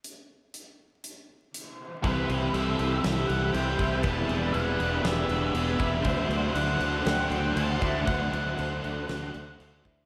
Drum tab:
CC |--------|xxxxxxxx|xxxxxxxx|xxxxxxxx|
HH |x-x-x-x-|--------|--------|--------|
SD |--------|----o---|----o---|----o---|
BD |--------|o------o|o------o|o------o|

CC |xxxxxxxx|
HH |--------|
SD |----o---|
BD |o------o|